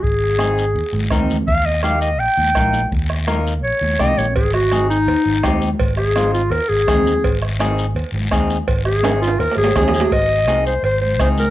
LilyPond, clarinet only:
\new Staff \with { instrumentName = "Clarinet" } { \time 4/4 \key aes \major \tempo 4 = 167 aes'2. r4 | f''8 ees''8 f''8 ees''8 g''2 | r2 des''4 ees''8 des''8 | aes'8 ges'4 ees'2 r8 |
r8 aes'4 f'8 bes'8 aes'4.~ | aes'8 r2. r8 | r8 aes'4 f'8 bes'8 aes'8 aes'8 aes'8 | ees''4. c''8 c''8 c''8 c''8 bes'8 | }